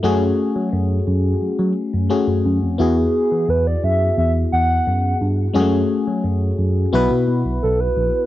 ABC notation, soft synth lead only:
X:1
M:4/4
L:1/16
Q:1/4=87
K:E
V:1 name="Soft synth lead"
z16 | F G3 B =d e2 e2 f4 z2 | z12 A B3 |]